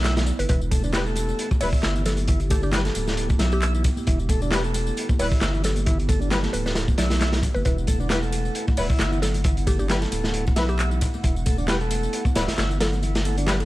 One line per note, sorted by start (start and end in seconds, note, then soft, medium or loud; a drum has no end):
0.00 0.32 B1 medium
0.00 13.65 B3 medium
0.00 0.15 E4 medium
0.00 13.65 E4 medium
0.00 0.48 A4 loud
0.04 snare loud
0.04 clap loud
0.04 closed hi-hat medium
0.04 tambourine soft
0.16 0.25 E3 loud
0.16 snare medium
0.16 closed hi-hat medium
0.16 tambourine soft
0.26 tambourine medium
0.39 0.46 G1 loud
0.39 0.45 B4 medium
0.39 closed hi-hat medium
0.39 tambourine soft
0.48 1.33 E1 loud
0.48 0.61 E3 medium
0.48 7.64 G4 medium
0.48 0.57 B4 medium
0.48 kick loud
0.48 closed hi-hat medium
0.48 tambourine soft
0.48 muted conga medium
0.61 tambourine soft
0.71 0.82 A3 medium
0.71 kick loud
0.71 closed hi-hat medium
0.71 ride medium
0.71 tambourine medium
0.71 high conga loud
0.83 0.92 D3 medium
0.83 tambourine soft
0.83 muted conga medium
0.93 1.05 G3 loud
0.93 1.00 G3 medium
0.93 1.00 E4 medium
0.93 1.00 B4 loud
0.93 snare loud
0.93 clap loud
0.93 closed hi-hat medium
0.93 tambourine soft
1.06 1.50 A3 medium
1.06 tambourine soft
1.06 high conga medium
1.16 closed hi-hat medium
1.16 ride medium
1.16 tambourine medium
1.16 muted conga medium
1.29 tambourine soft
1.39 closed hi-hat medium
1.39 tambourine soft
1.51 kick loud
1.51 tambourine soft
1.51 muted conga medium
1.51 high conga medium
1.61 1.72 D1 medium
1.61 1.67 G3 loud
1.61 1.67 E4 medium
1.61 1.95 E4 medium
1.61 1.67 B4 loud
1.61 1.77 D5 medium
1.61 open hi-hat medium
1.61 ride medium
1.61 tambourine medium
1.73 1.81 G1 soft
1.73 kick medium
1.73 tambourine soft
1.83 2.90 G1 medium
1.83 snare loud
1.83 clap loud
1.83 closed hi-hat medium
1.83 tambourine soft
1.83 high conga medium
1.96 2.04 E3 loud
1.96 tambourine soft
2.06 2.22 A4 medium
2.06 snare soft
2.06 closed hi-hat medium
2.06 ride medium
2.06 tambourine medium
2.06 low conga medium
2.17 closed hi-hat soft
2.17 tambourine soft
2.17 high conga loud
2.27 2.40 E3 medium
2.27 kick loud
2.27 closed hi-hat medium
2.27 tambourine soft
2.27 muted conga medium
2.40 closed hi-hat soft
2.40 tambourine soft
2.50 2.62 A3 medium
2.50 2.59 G4 medium
2.50 kick medium
2.50 closed hi-hat medium
2.50 ride medium
2.50 tambourine medium
2.50 high conga medium
2.62 2.71 D3 medium
2.62 2.69 G4 medium
2.62 tambourine soft
2.62 muted conga medium
2.72 2.84 G3 loud
2.72 2.79 G3 medium
2.72 2.79 E4 medium
2.72 2.79 B4 loud
2.72 snare loud
2.72 clap loud
2.72 closed hi-hat medium
2.72 tambourine soft
2.72 low conga loud
2.85 3.29 A3 medium
2.85 snare soft
2.85 ride medium
2.85 tambourine soft
2.85 high conga medium
2.94 3.34 D1 medium
2.94 closed hi-hat medium
2.94 ride medium
2.94 tambourine medium
2.94 muted conga medium
3.07 snare medium
3.07 tambourine soft
3.17 closed hi-hat medium
3.17 tambourine soft
3.29 kick medium
3.29 tambourine soft
3.29 high conga loud
3.39 3.90 B1 medium
3.39 3.73 E4 medium
3.39 snare loud
3.39 closed hi-hat medium
3.39 ride medium
3.39 tambourine medium
3.39 low conga medium
3.52 4.15 G4 medium
3.52 tambourine soft
3.62 clap loud
3.62 closed hi-hat medium
3.62 tambourine soft
3.62 high conga medium
3.74 3.83 E3 loud
3.74 tambourine soft
3.84 kick loud
3.84 closed hi-hat medium
3.84 ride medium
3.84 tambourine medium
3.84 muted conga soft
3.96 tambourine soft
3.96 high conga medium
4.07 4.91 E1 loud
4.07 4.19 E3 medium
4.07 kick loud
4.07 closed hi-hat medium
4.07 tambourine soft
4.07 muted conga medium
4.19 tambourine soft
4.29 4.41 A3 medium
4.29 kick medium
4.29 closed hi-hat medium
4.29 ride medium
4.29 tambourine medium
4.29 high conga medium
4.42 4.50 D3 medium
4.42 tambourine soft
4.42 muted conga soft
4.51 4.63 G3 loud
4.51 4.58 G3 medium
4.51 4.58 E4 medium
4.51 4.58 B4 loud
4.51 snare loud
4.51 clap loud
4.51 closed hi-hat medium
4.51 tambourine soft
4.64 5.08 A3 medium
4.64 tambourine soft
4.64 high conga medium
4.74 closed hi-hat medium
4.74 ride medium
4.74 tambourine medium
4.74 muted conga medium
4.87 tambourine soft
4.97 closed hi-hat medium
4.97 tambourine soft
5.09 kick medium
5.09 tambourine soft
5.09 muted conga medium
5.09 high conga medium
5.19 5.31 D1 medium
5.19 5.26 G3 loud
5.19 5.53 E4 medium
5.19 5.26 E4 medium
5.19 5.26 B4 loud
5.19 5.35 D5 medium
5.19 open hi-hat medium
5.19 ride medium
5.19 tambourine medium
5.32 5.40 G1 soft
5.32 kick loud
5.32 tambourine soft
5.41 6.48 G1 medium
5.41 snare loud
5.41 clap loud
5.41 closed hi-hat medium
5.41 tambourine soft
5.41 high conga medium
5.54 5.62 E3 loud
5.54 tambourine soft
5.64 5.80 A4 medium
5.64 snare soft
5.64 closed hi-hat medium
5.64 ride medium
5.64 tambourine medium
5.64 low conga medium
5.76 closed hi-hat soft
5.76 tambourine soft
5.76 high conga loud
5.86 5.98 E3 medium
5.86 kick loud
5.86 closed hi-hat medium
5.86 tambourine soft
5.86 muted conga medium
5.99 closed hi-hat soft
5.99 tambourine soft
6.08 6.20 A3 medium
6.08 kick loud
6.08 closed hi-hat medium
6.08 ride medium
6.08 tambourine medium
6.08 high conga medium
6.21 6.29 D3 medium
6.21 tambourine soft
6.21 muted conga soft
6.31 6.42 G3 loud
6.31 6.38 G3 medium
6.31 6.38 E4 medium
6.31 6.38 B4 loud
6.31 snare loud
6.31 clap loud
6.31 closed hi-hat medium
6.31 tambourine soft
6.31 low conga medium
6.43 6.87 A3 medium
6.43 snare medium
6.43 ride soft
6.43 tambourine soft
6.43 high conga medium
6.53 6.93 D1 medium
6.53 6.61 B4 medium
6.53 closed hi-hat medium
6.53 ride medium
6.53 tambourine medium
6.53 muted conga medium
6.66 6.72 B4 medium
6.66 snare medium
6.66 tambourine soft
6.75 snare loud
6.75 closed hi-hat medium
6.75 tambourine soft
6.88 kick medium
6.88 tambourine soft
6.88 high conga loud
6.98 7.49 B1 medium
6.98 7.32 E4 medium
6.98 7.14 D5 medium
6.98 snare medium
6.98 closed hi-hat medium
6.98 ride medium
6.98 tambourine medium
6.98 low conga medium
7.10 snare medium
7.10 closed hi-hat medium
7.10 tambourine soft
7.20 snare medium
7.20 clap loud
7.20 closed hi-hat medium
7.20 tambourine soft
7.20 high conga medium
7.33 7.41 E3 loud
7.33 snare loud
7.33 closed hi-hat medium
7.33 tambourine soft
7.43 kick medium
7.43 closed hi-hat medium
7.43 ride medium
7.43 tambourine medium
7.43 muted conga soft
7.54 7.62 G1 loud
7.54 7.61 B4 medium
7.54 tambourine soft
7.54 high conga medium
7.65 8.49 E1 loud
7.65 7.77 E3 medium
7.65 7.73 B4 medium
7.65 13.65 F#5 loud
7.65 kick loud
7.65 closed hi-hat medium
7.65 tambourine soft
7.65 muted conga medium
7.78 tambourine soft
7.87 7.99 A3 medium
7.87 kick medium
7.87 closed hi-hat medium
7.87 ride medium
7.87 tambourine medium
7.87 high conga loud
8.00 8.08 D3 medium
8.00 tambourine soft
8.00 muted conga medium
8.10 8.21 G3 loud
8.10 8.17 G3 medium
8.10 8.17 E4 medium
8.10 8.17 B4 loud
8.10 snare loud
8.10 clap loud
8.10 closed hi-hat medium
8.10 tambourine soft
8.22 8.66 A3 medium
8.22 tambourine soft
8.22 high conga medium
8.32 closed hi-hat medium
8.32 ride medium
8.32 tambourine medium
8.32 muted conga medium
8.45 tambourine soft
8.55 closed hi-hat medium
8.55 tambourine soft
8.67 kick medium
8.67 tambourine soft
8.67 muted conga medium
8.67 high conga loud
8.77 8.89 D1 medium
8.77 8.84 G3 loud
8.77 9.11 E4 medium
8.77 8.84 E4 medium
8.77 8.84 B4 loud
8.77 8.94 D5 medium
8.77 open hi-hat medium
8.77 ride medium
8.77 tambourine medium
8.90 8.98 G1 soft
8.90 kick loud
8.90 tambourine soft
8.99 10.06 G1 medium
8.99 snare loud
8.99 clap loud
8.99 closed hi-hat medium
8.99 tambourine soft
8.99 high conga medium
9.12 9.20 E3 loud
9.12 tambourine soft
9.22 9.38 A4 medium
9.22 snare soft
9.22 closed hi-hat medium
9.22 ride medium
9.22 tambourine medium
9.22 low conga medium
9.34 closed hi-hat soft
9.34 tambourine soft
9.34 high conga loud
9.44 9.56 E3 medium
9.44 kick loud
9.44 closed hi-hat medium
9.44 tambourine soft
9.44 muted conga medium
9.57 closed hi-hat soft
9.57 tambourine soft
9.67 9.78 A3 medium
9.67 9.75 G4 medium
9.67 kick medium
9.67 closed hi-hat medium
9.67 ride medium
9.67 tambourine medium
9.67 high conga medium
9.79 9.87 D3 medium
9.79 9.86 G4 medium
9.79 tambourine soft
9.79 muted conga medium
9.89 10.00 G3 loud
9.89 9.96 G3 medium
9.89 9.96 E4 medium
9.89 9.96 B4 loud
9.89 snare loud
9.89 clap loud
9.89 closed hi-hat medium
9.89 tambourine soft
9.89 low conga medium
10.01 10.45 A3 medium
10.01 snare medium
10.01 ride soft
10.01 tambourine soft
10.01 high conga medium
10.12 10.51 D1 medium
10.12 closed hi-hat medium
10.12 ride medium
10.12 tambourine medium
10.12 muted conga medium
10.24 snare medium
10.24 tambourine soft
10.34 closed hi-hat medium
10.34 tambourine soft
10.47 kick loud
10.47 tambourine soft
10.47 high conga medium
10.56 11.07 B1 medium
10.56 10.63 G3 loud
10.56 10.90 E4 medium
10.56 10.63 E4 medium
10.56 10.63 B4 loud
10.56 snare loud
10.56 closed hi-hat medium
10.56 ride medium
10.56 tambourine medium
10.56 low conga medium
10.69 11.31 G4 medium
10.69 tambourine soft
10.79 clap loud
10.79 closed hi-hat medium
10.79 tambourine soft
10.79 high conga medium
10.90 10.99 E3 loud
10.90 tambourine soft
11.01 kick medium
11.01 closed hi-hat medium
11.01 ride medium
11.01 tambourine medium
11.01 muted conga soft
11.14 tambourine soft
11.14 high conga medium
11.23 12.08 E1 loud
11.23 11.35 E3 medium
11.23 kick loud
11.23 closed hi-hat medium
11.23 tambourine soft
11.23 muted conga medium
11.36 tambourine soft
11.46 11.57 A3 medium
11.46 kick medium
11.46 closed hi-hat medium
11.46 ride medium
11.46 tambourine medium
11.46 high conga medium
11.58 11.66 D3 medium
11.58 tambourine soft
11.58 muted conga medium
11.68 11.80 G3 loud
11.68 11.75 G3 medium
11.68 11.75 E4 medium
11.68 11.75 B4 loud
11.68 snare loud
11.68 clap loud
11.68 closed hi-hat medium
11.68 tambourine soft
11.81 12.24 A3 medium
11.81 tambourine soft
11.81 high conga medium
11.91 closed hi-hat medium
11.91 ride medium
11.91 tambourine medium
11.91 muted conga medium
12.03 tambourine soft
12.13 closed hi-hat medium
12.13 tambourine soft
12.25 kick medium
12.25 tambourine soft
12.25 muted conga medium
12.25 high conga medium
12.35 12.48 D1 medium
12.35 12.42 G3 loud
12.35 12.69 E4 medium
12.35 12.42 E4 medium
12.35 12.42 B4 loud
12.35 12.52 D5 medium
12.35 snare loud
12.35 closed hi-hat medium
12.35 ride medium
12.35 tambourine medium
12.48 12.56 G1 soft
12.48 snare loud
12.48 closed hi-hat medium
12.48 tambourine soft
12.58 13.64 G1 medium
12.58 snare loud
12.58 clap loud
12.58 closed hi-hat medium
12.58 tambourine soft
12.58 high conga medium
12.70 12.78 E3 loud
12.70 tambourine soft
12.80 12.97 A4 loud
12.80 snare loud
12.80 closed hi-hat medium
12.80 ride medium
12.80 tambourine medium
12.80 low conga medium
12.93 tambourine soft
12.93 high conga medium
13.02 13.14 E3 medium
13.02 closed hi-hat medium
13.02 tambourine soft
13.02 muted conga medium
13.15 snare loud
13.15 closed hi-hat medium
13.15 tambourine soft
13.25 13.36 A3 medium
13.25 ride medium
13.25 tambourine medium
13.25 high conga medium
13.38 13.46 D3 medium
13.38 closed hi-hat medium
13.38 tambourine soft
13.38 muted conga medium
13.47 13.59 G3 loud
13.47 13.54 G3 medium
13.47 13.54 E4 medium
13.47 13.54 B4 loud
13.47 snare loud
13.47 clap loud
13.47 closed hi-hat medium
13.47 tambourine soft
13.47 low conga medium
13.60 13.65 A3 medium
13.60 ride medium
13.60 tambourine soft
13.60 high conga medium